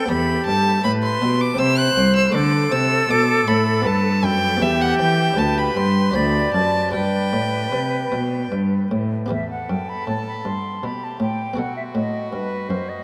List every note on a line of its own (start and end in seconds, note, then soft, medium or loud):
0.00 0.10 G5 loud
0.06 0.80 B3 medium
0.06 1.55 E4 medium
0.06 0.82 G4 medium
0.06 1.56 G4 medium
0.06 0.45 B5 loud
0.10 0.45 E2 medium
0.10 0.44 E2 medium
0.46 0.83 G2 medium
0.46 0.81 G2 medium
0.46 0.83 A5 loud
0.83 1.21 A2 medium
0.83 1.18 A2 medium
0.83 1.57 B4 medium
0.83 0.92 B5 loud
1.03 1.42 C6 loud
1.22 1.58 B2 medium
1.22 1.56 B2 medium
1.41 1.60 D6 loud
1.54 1.96 C3 medium
1.54 2.30 C4 medium
1.54 2.31 E4 medium
1.54 2.32 G4 medium
1.54 2.36 C5 medium
1.59 1.94 C3 medium
1.59 1.79 E6 loud
1.78 2.15 F#6 loud
1.96 2.34 C2 medium
1.96 2.32 C2 medium
2.16 2.33 E6 loud
2.30 2.69 A3 medium
2.30 3.81 F#4 medium
2.30 3.81 D5 medium
2.30 2.73 D6 loud
2.35 2.72 D3 medium
2.35 2.69 D3 medium
2.35 3.87 A4 loud
2.72 3.06 C3 medium
2.72 3.09 C3 medium
2.72 3.12 E6 loud
3.09 3.44 B2 medium
3.09 3.46 B2 medium
3.09 3.49 D6 loud
3.46 3.87 A2 medium
3.46 3.82 A2 medium
3.46 3.87 B5 loud
3.82 4.24 G2 medium
3.82 4.21 B3 medium
3.82 4.57 G4 medium
3.82 4.59 B4 medium
3.82 4.35 B4 medium
3.86 4.20 G2 medium
3.86 4.26 A5 loud
4.23 4.62 F#2 medium
4.23 4.58 F#2 medium
4.23 4.63 G5 loud
4.57 4.98 E2 medium
4.57 5.33 B3 medium
4.57 5.34 G4 medium
4.57 5.39 G4 loud
4.57 5.35 B4 medium
4.61 4.96 E2 medium
4.61 4.83 E5 loud
4.81 4.98 F#5 loud
4.98 5.36 E3 medium
4.98 5.34 E3 medium
4.98 5.39 G5 loud
5.33 5.75 D2 medium
5.33 6.10 D4 medium
5.33 6.11 G4 medium
5.33 6.12 B4 medium
5.33 6.16 B4 medium
5.38 5.73 D2 medium
5.38 5.59 A5 medium
5.57 5.78 B5 medium
5.75 6.14 G2 medium
5.75 6.11 G2 medium
5.75 6.17 C6 loud
6.11 6.52 D2 medium
6.11 6.87 D4 soft
6.11 6.89 F#4 soft
6.11 6.90 C5 soft
6.15 6.50 D2 medium
6.15 6.93 D5 medium
6.15 6.54 B5 medium
6.53 6.94 F#2 medium
6.53 6.90 F#2 medium
6.53 6.92 A5 medium
6.89 7.29 D4 medium
6.89 9.25 G4 medium
6.89 9.26 B4 medium
6.93 7.34 G2 medium
6.93 7.29 G2 medium
6.93 8.88 B4 medium
6.93 8.49 G5 medium
7.33 7.72 A2 medium
7.33 7.69 A2 medium
7.72 8.08 C3 medium
7.72 8.12 C3 medium
8.12 8.48 B2 medium
8.12 8.51 B2 medium
8.51 8.90 G2 medium
8.51 8.88 G2 soft
8.91 9.27 A2 soft
8.91 9.30 A2 medium
9.26 9.66 B3 soft
9.26 11.52 G4 soft
9.26 11.52 B4 soft
9.30 9.65 E2 soft
9.30 9.67 E2 medium
9.30 10.85 A4 medium
9.30 9.49 E5 medium
9.51 9.71 F#5 medium
9.69 10.04 F#2 soft
9.69 10.05 F#2 medium
9.69 9.91 G5 medium
9.89 10.08 B5 medium
10.07 10.42 A2 medium
10.07 10.41 A2 soft
10.07 10.26 A5 medium
10.27 10.47 B5 medium
10.45 10.80 G2 medium
10.45 10.79 G2 soft
10.45 10.86 C6 medium
10.83 11.17 B2 medium
10.83 11.17 B2 soft
10.83 11.57 G4 soft
10.83 11.05 B5 medium
11.04 11.21 A5 medium
11.20 11.54 A2 soft
11.20 11.55 A2 medium
11.20 11.60 G5 medium
11.53 13.01 B3 soft
11.53 13.02 F#4 soft
11.53 13.02 A4 soft
11.58 11.92 B2 medium
11.58 11.92 B2 soft
11.58 13.04 F#4 medium
11.58 11.76 F#5 medium
11.76 11.82 E5 medium
11.95 12.28 A2 soft
11.95 12.30 A2 soft
11.95 12.32 D#5 medium
12.32 12.67 G2 medium
12.32 12.66 G2 soft
12.32 12.71 B4 medium
12.69 13.04 F#2 medium
12.69 13.03 F#2 soft
12.69 12.91 C5 medium
12.89 13.04 D#5 medium